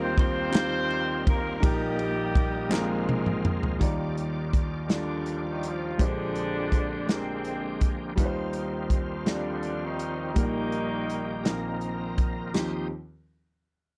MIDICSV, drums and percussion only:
0, 0, Header, 1, 2, 480
1, 0, Start_track
1, 0, Key_signature, -3, "major"
1, 0, Tempo, 727273
1, 1076, Time_signature, 6, 3, 24, 8
1, 9222, End_track
2, 0, Start_track
2, 0, Title_t, "Drums"
2, 116, Note_on_c, 9, 36, 98
2, 125, Note_on_c, 9, 51, 46
2, 182, Note_off_c, 9, 36, 0
2, 191, Note_off_c, 9, 51, 0
2, 354, Note_on_c, 9, 39, 97
2, 361, Note_on_c, 9, 51, 60
2, 364, Note_on_c, 9, 38, 113
2, 420, Note_off_c, 9, 39, 0
2, 427, Note_off_c, 9, 51, 0
2, 430, Note_off_c, 9, 38, 0
2, 597, Note_on_c, 9, 51, 39
2, 663, Note_off_c, 9, 51, 0
2, 838, Note_on_c, 9, 36, 105
2, 838, Note_on_c, 9, 51, 52
2, 904, Note_off_c, 9, 36, 0
2, 904, Note_off_c, 9, 51, 0
2, 1076, Note_on_c, 9, 36, 118
2, 1079, Note_on_c, 9, 51, 73
2, 1142, Note_off_c, 9, 36, 0
2, 1145, Note_off_c, 9, 51, 0
2, 1313, Note_on_c, 9, 51, 49
2, 1379, Note_off_c, 9, 51, 0
2, 1554, Note_on_c, 9, 36, 98
2, 1561, Note_on_c, 9, 51, 41
2, 1620, Note_off_c, 9, 36, 0
2, 1627, Note_off_c, 9, 51, 0
2, 1794, Note_on_c, 9, 39, 114
2, 1806, Note_on_c, 9, 38, 61
2, 1860, Note_off_c, 9, 39, 0
2, 1872, Note_off_c, 9, 38, 0
2, 2038, Note_on_c, 9, 48, 80
2, 2104, Note_off_c, 9, 48, 0
2, 2154, Note_on_c, 9, 47, 71
2, 2220, Note_off_c, 9, 47, 0
2, 2276, Note_on_c, 9, 45, 117
2, 2342, Note_off_c, 9, 45, 0
2, 2397, Note_on_c, 9, 43, 97
2, 2463, Note_off_c, 9, 43, 0
2, 2514, Note_on_c, 9, 36, 91
2, 2516, Note_on_c, 9, 42, 74
2, 2580, Note_off_c, 9, 36, 0
2, 2582, Note_off_c, 9, 42, 0
2, 2756, Note_on_c, 9, 42, 51
2, 2822, Note_off_c, 9, 42, 0
2, 2993, Note_on_c, 9, 36, 85
2, 2998, Note_on_c, 9, 42, 43
2, 3059, Note_off_c, 9, 36, 0
2, 3064, Note_off_c, 9, 42, 0
2, 3231, Note_on_c, 9, 42, 58
2, 3234, Note_on_c, 9, 38, 89
2, 3297, Note_off_c, 9, 42, 0
2, 3300, Note_off_c, 9, 38, 0
2, 3471, Note_on_c, 9, 42, 45
2, 3537, Note_off_c, 9, 42, 0
2, 3716, Note_on_c, 9, 42, 51
2, 3782, Note_off_c, 9, 42, 0
2, 3956, Note_on_c, 9, 36, 91
2, 3958, Note_on_c, 9, 42, 74
2, 4022, Note_off_c, 9, 36, 0
2, 4024, Note_off_c, 9, 42, 0
2, 4194, Note_on_c, 9, 42, 49
2, 4260, Note_off_c, 9, 42, 0
2, 4436, Note_on_c, 9, 36, 75
2, 4442, Note_on_c, 9, 42, 44
2, 4502, Note_off_c, 9, 36, 0
2, 4508, Note_off_c, 9, 42, 0
2, 4678, Note_on_c, 9, 42, 59
2, 4681, Note_on_c, 9, 38, 79
2, 4744, Note_off_c, 9, 42, 0
2, 4747, Note_off_c, 9, 38, 0
2, 4914, Note_on_c, 9, 42, 44
2, 4980, Note_off_c, 9, 42, 0
2, 5154, Note_on_c, 9, 42, 50
2, 5157, Note_on_c, 9, 36, 85
2, 5220, Note_off_c, 9, 42, 0
2, 5223, Note_off_c, 9, 36, 0
2, 5396, Note_on_c, 9, 36, 90
2, 5396, Note_on_c, 9, 42, 68
2, 5462, Note_off_c, 9, 36, 0
2, 5462, Note_off_c, 9, 42, 0
2, 5630, Note_on_c, 9, 42, 51
2, 5696, Note_off_c, 9, 42, 0
2, 5874, Note_on_c, 9, 36, 75
2, 5877, Note_on_c, 9, 42, 48
2, 5940, Note_off_c, 9, 36, 0
2, 5943, Note_off_c, 9, 42, 0
2, 6113, Note_on_c, 9, 42, 58
2, 6117, Note_on_c, 9, 38, 77
2, 6179, Note_off_c, 9, 42, 0
2, 6183, Note_off_c, 9, 38, 0
2, 6354, Note_on_c, 9, 42, 42
2, 6420, Note_off_c, 9, 42, 0
2, 6595, Note_on_c, 9, 42, 50
2, 6661, Note_off_c, 9, 42, 0
2, 6837, Note_on_c, 9, 42, 69
2, 6838, Note_on_c, 9, 36, 85
2, 6903, Note_off_c, 9, 42, 0
2, 6904, Note_off_c, 9, 36, 0
2, 7077, Note_on_c, 9, 42, 49
2, 7143, Note_off_c, 9, 42, 0
2, 7323, Note_on_c, 9, 42, 41
2, 7389, Note_off_c, 9, 42, 0
2, 7559, Note_on_c, 9, 42, 59
2, 7563, Note_on_c, 9, 38, 81
2, 7625, Note_off_c, 9, 42, 0
2, 7629, Note_off_c, 9, 38, 0
2, 7795, Note_on_c, 9, 42, 38
2, 7861, Note_off_c, 9, 42, 0
2, 8037, Note_on_c, 9, 42, 49
2, 8039, Note_on_c, 9, 36, 80
2, 8103, Note_off_c, 9, 42, 0
2, 8105, Note_off_c, 9, 36, 0
2, 8278, Note_on_c, 9, 49, 74
2, 8284, Note_on_c, 9, 38, 79
2, 8344, Note_off_c, 9, 49, 0
2, 8350, Note_off_c, 9, 38, 0
2, 9222, End_track
0, 0, End_of_file